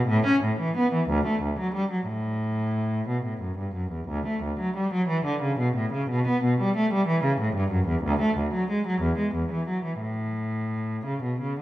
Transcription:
0.08 0.24 A2 medium
0.26 0.42 C#4 medium
0.44 0.59 A2 medium
0.60 0.75 E3 medium
0.77 0.92 B3 medium
0.93 1.08 E3 medium
1.09 1.25 D2 medium
1.26 1.41 A3 medium
1.43 1.58 D2 soft
1.59 1.74 F#3 medium
1.75 1.90 G3 soft
1.91 2.07 F#3 soft
2.08 3.06 A2 medium
3.08 3.24 B2 soft
3.25 3.41 A2 soft
3.41 3.58 F#2 soft
3.58 3.74 G2 soft
3.75 3.91 F#2 soft
3.92 4.08 E2 soft
4.08 4.25 D2 medium
4.27 4.42 A3 soft
4.43 4.59 D2 soft
4.60 4.75 F#3 medium
4.76 4.92 G3 medium
4.94 5.09 F#3 medium
5.08 5.24 E3 medium
5.25 5.41 D3 medium
5.42 5.58 C#3 medium
5.59 5.75 B2 medium
5.76 5.92 A2 medium
5.93 6.09 C#3 medium
6.10 6.26 B2 medium
6.27 6.43 B3 medium
6.44 6.59 B2 medium
6.61 6.76 G3 medium
6.76 6.92 A3 medium
6.93 7.08 G3 medium
7.07 7.23 E3 medium
7.24 7.39 C#3 medium
7.40 7.55 A2 medium
7.56 7.71 G2 medium
7.71 7.87 F#2 medium
7.87 8.03 E2 medium
8.03 8.19 D2 medium
8.22 8.37 A3 medium
8.38 8.53 D2 medium
8.54 8.69 F#3 medium
8.70 8.85 G#3 medium
8.87 9.02 F#3 medium
9.01 9.17 E2 medium
9.18 9.34 G#3 soft
9.34 9.50 E2 soft
9.52 9.68 E3 soft
9.68 9.84 F#3 soft
9.85 10.01 E3 soft
10.01 11.04 A2 medium
11.05 11.23 C#3 soft
11.23 11.41 B2 soft
11.41 11.59 C#3 soft

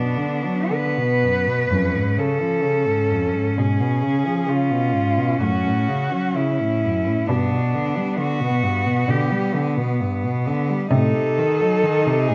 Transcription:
0.00 0.52 F#2 soft
0.00 0.19 B2 soft
0.00 1.72 B3 soft
0.00 0.74 D4 soft
0.17 0.47 D3 soft
0.45 0.73 F#3 soft
0.72 1.00 D3 soft
0.72 2.21 B4 medium
0.98 1.25 B2 soft
1.23 1.49 F#2 soft
1.47 1.70 B2 soft
1.70 1.95 F2 soft
1.70 2.47 F#2 soft
1.70 7.29 C#4 soft
1.94 2.19 G#2 soft
2.18 2.43 C#3 soft
2.18 3.60 A4 medium
2.41 2.65 F3 soft
2.64 2.89 C#3 soft
2.87 3.12 G#2 soft
3.11 3.36 F2 soft
3.34 3.57 G#2 soft
3.57 3.82 G#2 soft
3.57 4.31 B2 soft
3.57 4.51 G#4 soft
3.81 4.04 B2 soft
4.03 4.27 C#3 soft
4.25 4.50 F3 soft
4.49 4.73 C#3 soft
4.49 5.41 F4 soft
4.71 4.95 B2 soft
4.94 5.19 G#2 soft
5.18 5.40 B2 soft
5.40 5.67 F#2 soft
5.40 6.18 A2 soft
5.40 6.38 F#4 medium
5.65 5.90 A2 soft
5.89 6.14 C#3 soft
6.13 6.38 F#3 soft
6.36 6.63 C#3 soft
6.36 7.29 E4 soft
6.61 6.86 A2 soft
6.84 7.09 F#2 soft
7.08 7.29 A2 soft
7.28 7.53 G2 soft
7.28 8.02 B2 soft
7.28 10.87 B3 soft
7.28 8.18 D4 soft
7.52 7.77 B2 soft
7.75 7.98 D3 soft
7.97 8.20 G3 soft
8.19 8.42 D3 soft
8.19 9.12 F#4 medium
8.41 8.65 B2 soft
8.63 8.88 G2 soft
8.86 9.08 B2 soft
9.09 9.82 B2 soft
9.09 9.33 D3 soft
9.09 9.55 G4 soft
9.31 9.56 G3 soft
9.54 9.79 D3 soft
9.78 10.02 B2 soft
10.01 10.26 G2 soft
10.24 10.48 B2 soft
10.47 10.71 D3 soft
10.70 10.92 G3 soft
10.91 11.16 A2 soft
10.91 11.65 C3 soft
10.91 12.35 D#4 soft
10.91 12.30 A4 medium
11.14 11.39 C3 soft
11.38 11.62 D#3 soft
11.61 11.85 F#3 soft
11.83 12.08 D#3 soft
12.07 12.31 C3 soft
12.28 12.35 A2 soft
12.28 12.35 G#4 medium

